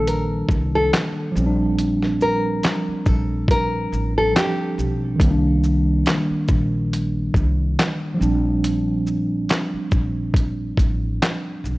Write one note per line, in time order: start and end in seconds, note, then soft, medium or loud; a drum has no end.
0.00 0.45 A#1 medium
0.00 1.27 D#3 medium
0.00 1.28 G3 medium
0.00 1.30 A#3 medium
0.00 1.34 D4 medium
0.07 0.70 A#4 medium
0.07 closed hi-hat medium
0.49 0.89 C2 medium
0.49 kick medium
0.49 shaker soft
0.75 0.91 A4 medium
0.93 snare loud
0.93 clap medium
0.93 closed hi-hat medium
1.31 2.59 A#1 medium
1.31 4.29 F3 medium
1.31 4.30 G3 medium
1.36 4.32 C4 medium
1.36 1.44 C#4 medium
1.36 shaker medium
1.46 4.36 D4 loud
1.79 closed hi-hat medium
2.03 snare soft
2.21 3.08 A#4 medium
2.21 shaker soft
2.63 snare loud
2.63 clap medium
2.63 closed hi-hat medium
2.88 muted upright bass stroke soft
3.06 3.88 A#1 medium
3.06 3.46 A4 medium
3.06 kick medium
3.06 shaker soft
3.48 4.13 A#4 medium
3.48 kick medium
3.48 closed hi-hat medium
3.92 4.32 A1 medium
3.92 shaker soft
4.18 4.34 A4 medium
4.33 5.19 F3 soft
4.33 5.18 G3 soft
4.33 5.21 C4 soft
4.33 4.74 G4 medium
4.33 snare loud
4.33 clap medium
4.33 closed hi-hat medium
4.37 5.22 D4 medium
4.78 5.17 B1 medium
4.78 shaker medium
5.16 8.14 D#3 medium
5.16 8.15 G3 medium
5.16 kick loud
5.20 6.02 C2 loud
5.20 8.17 A#3 medium
5.20 closed hi-hat loud
5.24 5.29 C4 medium
5.31 8.21 D4 medium
5.64 shaker soft
6.06 snare loud
6.06 clap medium
6.06 closed hi-hat medium
6.31 muted upright bass stroke soft
6.48 7.31 A#1 medium
6.48 kick medium
6.48 shaker soft
6.93 closed hi-hat medium
7.34 7.74 C2 medium
7.34 kick medium
7.34 shaker soft
7.79 snare loud
7.79 clap medium
7.79 closed hi-hat medium
8.14 11.56 F3 medium
8.14 11.58 G3 medium
8.20 9.45 A#1 medium
8.20 11.59 C4 medium
8.20 11.60 D4 medium
8.20 shaker medium
8.64 closed hi-hat medium
9.07 shaker soft
9.49 snare loud
9.49 clap medium
9.49 closed hi-hat medium
9.74 muted upright bass stroke soft
9.91 10.73 A#1 medium
9.91 kick medium
9.91 shaker soft
10.34 kick medium
10.34 closed hi-hat medium
10.77 11.17 A1 medium
10.77 kick medium
10.77 closed hi-hat soft
10.77 shaker soft
11.22 snare loud
11.22 clap medium
11.22 closed hi-hat medium
11.64 11.78 B1 medium
11.64 shaker soft